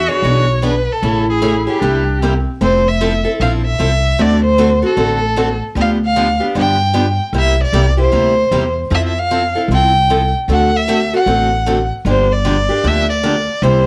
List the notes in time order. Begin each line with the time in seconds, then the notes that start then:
Already playing: F#4 E5
0.08 B3 D4 G#4 C#5
0.22 B1 E3 B3 D4 G#4
0.62 E3 B3 D4 G#4 B4
0.92 A4
1.02 A1 C#3 E3 A3 C#4 E4 G#4
1.30 G#4
1.42 C#3 E3 A3 C#4 G#4
1.67 A3 C#4 G4 G#4
1.80 C2 C3 G3 A#3 D4 E4 G4
2.20 C3 G3 A#3 C4 E4 G4
2.61 F1 F3 C4 E4 A4 C5
2.88 E5
3.00 F3 C4 E4 A4
3.24 C4 E4 A4
3.40 A#1 F3 C4 E4 A4 F5
3.65 E5
3.78 C2 F3 C4 E4 A4
4.19 D2 D3 A3 C4 F#4 A4 D5
4.45 C5
4.58 D3 A3 C4 F#4 A4
4.82 C4 F#4 A4
4.97 A1 D3 A3 C4 F#4 A4
5.37 D3 A3 C4 F#4 A4
5.75 D2 D3 F3 B3 D4 G4
5.81 F5
6.05 F5
6.16 D3 F3 B3 D4 G4
6.40 B3 D4 G4
6.55 G2 D3 F3 B3 D4 G4
6.59 G5
6.94 D3 F3 B3 D4 G4
7.33 C2 C3 G3 A#3 E4 G4
7.39 E5
7.63 D5
7.73 C2 C3 G3 A#3 E4 G4
7.97 A#3 E4 G4 C5
8.12 D2 C3 G3 A#3 E4 G4
8.51 E2 C3 G3 A#3 E4 G4
8.90 F2 F3 C4 E4 A4
8.94 E5
9.07 E5
9.19 F5
9.31 F3 C4 E4 A4
9.55 C4 E4 A4
9.68 C2 F3 C4 E4 A4
9.74 G5
10.10 F3 C4 E4 A4
10.48 D2 D3 A3 C4 F#4 A4 F#5
10.76 E5
10.88 D3 A3 C4 F#4 A4
11.13 C4 F#4 A4 F#5
11.26 A1 D3 A3 C4 F#4 A4
11.66 D3 A3 C4 F#4 A4
12.05 G1 D3 F3 A#3 D4 G4
12.09 C5
12.32 D5
12.45 D3 F3 A#3 D4 G4
12.69 A#3 D4 G4
12.84 D2 D3 F3 A#3 D4 G4 E5
13.10 D5
13.23 D3 F3 A#3 D4 G4
13.62 C2 C3 G3 A#3 E4 G4 C5